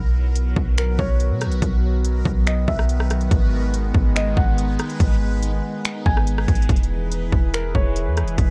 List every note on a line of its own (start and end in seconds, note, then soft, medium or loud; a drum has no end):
0.00 0.54 B1 loud
0.00 6.65 D#3 medium
0.00 3.28 F#3 medium
0.00 6.65 B3 medium
0.00 3.28 F#4 medium
0.00 3.28 A#4 medium
0.00 8.50 B4 medium
0.36 closed hi-hat medium
0.56 0.97 B1 loud
0.56 kick loud
0.78 0.98 A#4 medium
0.78 finger snap loud
0.78 closed hi-hat medium
0.99 1.32 B1 loud
0.99 1.59 C#5 medium
0.99 kick loud
1.20 closed hi-hat medium
1.30 1.48 B2 loud
1.41 cross-stick loud
1.41 closed hi-hat medium
1.46 1.61 B1 loud
1.52 closed hi-hat soft
1.62 2.23 B1 loud
1.62 kick loud
1.62 closed hi-hat medium
2.05 closed hi-hat medium
2.25 2.66 B1 loud
2.25 kick loud
2.47 2.67 D#5 medium
2.47 finger snap loud
2.47 closed hi-hat medium
2.68 3.29 B1 loud
2.68 3.27 E5 medium
2.68 kick loud
2.79 cross-stick loud
2.89 closed hi-hat medium
3.00 cross-stick loud
3.10 cross-stick loud
3.10 closed hi-hat medium
3.21 closed hi-hat soft
3.31 3.92 G#1 loud
3.31 6.66 G#3 medium
3.31 8.50 G#3 medium
3.31 6.66 D#4 medium
3.31 kick loud
3.31 closed hi-hat medium
3.74 closed hi-hat medium
3.94 4.35 G#1 loud
3.94 kick loud
4.16 4.36 D#5 loud
4.16 finger snap loud
4.16 closed hi-hat medium
4.37 4.77 G#1 loud
4.37 4.96 F#5 medium
4.37 kick loud
4.58 closed hi-hat medium
4.79 cross-stick loud
4.79 closed hi-hat medium
4.90 closed hi-hat soft
5.00 5.61 G#1 loud
5.00 kick loud
5.00 closed hi-hat medium
5.43 closed hi-hat medium
5.85 finger snap loud
5.85 closed hi-hat medium
6.06 6.46 G#1 loud
6.06 6.65 G#5 medium
6.06 kick medium
6.17 cross-stick loud
6.27 closed hi-hat medium
6.38 cross-stick loud
6.48 6.68 G#1 loud
6.48 kick medium
6.48 closed hi-hat medium
6.55 closed hi-hat medium
6.62 closed hi-hat medium
6.69 7.30 E1 loud
6.69 8.50 E3 medium
6.69 8.50 E4 medium
6.69 8.50 G#4 medium
6.69 8.50 B4 medium
6.69 kick loud
6.69 closed hi-hat medium
6.76 closed hi-hat medium
6.83 closed hi-hat medium
7.12 closed hi-hat medium
7.32 7.73 E1 loud
7.32 kick loud
7.54 7.74 A#4 medium
7.54 finger snap loud
7.54 closed hi-hat medium
7.75 8.08 E1 loud
7.75 8.34 C#5 medium
7.75 kick medium
7.96 closed hi-hat medium
8.07 8.24 E2 loud
8.17 cross-stick loud
8.17 closed hi-hat medium
8.22 8.37 E1 loud
8.28 closed hi-hat soft
8.38 8.50 E1 loud
8.38 kick loud
8.38 closed hi-hat medium